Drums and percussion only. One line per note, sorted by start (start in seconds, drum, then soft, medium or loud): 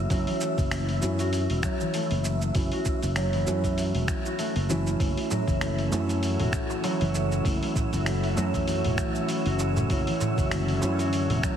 0.10 kick loud
0.10 open hi-hat medium
0.10 cabasa soft
0.27 open hi-hat soft
0.41 cabasa medium
0.58 kick loud
0.58 open hi-hat soft
0.58 cabasa soft
0.71 finger snap medium
0.71 open hi-hat medium
0.71 cabasa soft
0.89 open hi-hat soft
1.02 cabasa medium
1.19 open hi-hat soft
1.19 cabasa soft
1.33 open hi-hat medium
1.33 cabasa soft
1.50 open hi-hat soft
1.63 finger snap medium
1.63 kick loud
1.63 cabasa medium
1.80 cabasa soft
1.94 open hi-hat medium
1.94 cabasa soft
2.11 open hi-hat soft
2.24 cabasa medium
2.42 cabasa soft
2.55 kick loud
2.55 open hi-hat medium
2.55 cabasa soft
2.72 open hi-hat soft
2.85 kick loud
2.85 cabasa medium
3.03 open hi-hat soft
3.03 cabasa soft
3.16 finger snap medium
3.16 open hi-hat medium
3.16 cabasa soft
3.33 open hi-hat soft
3.47 cabasa medium
3.64 kick medium
3.64 open hi-hat soft
3.64 cabasa soft
3.78 open hi-hat medium
3.78 cabasa soft
3.95 open hi-hat soft
4.08 finger snap medium
4.08 kick loud
4.08 cabasa medium
4.25 cabasa soft
4.39 open hi-hat medium
4.39 cabasa soft
4.56 open hi-hat soft
4.70 cabasa medium
4.87 cabasa soft
5.00 kick loud
5.00 open hi-hat medium
5.00 cabasa soft
5.17 open hi-hat soft
5.31 darbuka ka medium
5.31 darbuka dum medium
5.31 cabasa medium
5.48 kick loud
5.48 open hi-hat soft
5.48 cabasa soft
5.61 finger snap medium
5.61 open hi-hat medium
5.61 cabasa soft
5.78 open hi-hat soft
5.92 darbuka tek medium
5.92 cabasa medium
6.09 open hi-hat soft
6.09 darbuka ka soft
6.09 cabasa soft
6.23 open hi-hat medium
6.23 cabasa soft
6.40 open hi-hat soft
6.40 darbuka dum medium
6.53 finger snap medium
6.53 kick loud
6.53 cabasa medium
6.70 darbuka ka medium
6.70 darbuka tek medium
6.70 cabasa soft
6.84 open hi-hat medium
6.84 darbuka tek medium
6.84 cabasa soft
7.01 open hi-hat soft
7.15 cabasa medium
7.32 cabasa soft
7.45 kick loud
7.45 open hi-hat medium
7.45 cabasa soft
7.63 open hi-hat soft
7.76 kick loud
7.76 darbuka ka medium
7.76 darbuka dum medium
7.76 cabasa medium
7.93 open hi-hat soft
7.93 cabasa soft
8.06 finger snap medium
8.06 open hi-hat medium
8.06 darbuka ka soft
8.06 cabasa soft
8.24 open hi-hat soft
8.37 darbuka tek medium
8.37 cabasa medium
8.54 kick medium
8.54 open hi-hat soft
8.54 darbuka ka soft
8.54 darbuka tek soft
8.54 cabasa soft
8.68 open hi-hat medium
8.68 cabasa soft
8.84 open hi-hat soft
8.84 darbuka dum medium
8.98 finger snap medium
8.98 kick loud
8.98 cabasa medium
9.15 cabasa soft
9.29 open hi-hat medium
9.29 cabasa soft
9.46 open hi-hat soft
9.59 darbuka tek medium
9.59 cabasa medium
9.77 darbuka dum medium
9.77 cabasa soft
9.90 kick loud
9.90 open hi-hat medium
9.90 cabasa soft
10.07 open hi-hat soft
10.21 darbuka ka medium
10.21 darbuka dum loud
10.21 cabasa medium
10.38 kick loud
10.38 open hi-hat soft
10.38 cabasa soft
10.51 finger snap medium
10.51 open hi-hat medium
10.51 cabasa soft
10.68 open hi-hat soft
10.82 darbuka tek medium
10.82 cabasa medium
10.99 open hi-hat soft
10.99 darbuka ka medium
10.99 cabasa soft
11.13 open hi-hat medium
11.13 cabasa soft
11.30 open hi-hat soft
11.30 darbuka dum medium
11.43 finger snap medium
11.43 kick loud
11.43 cabasa medium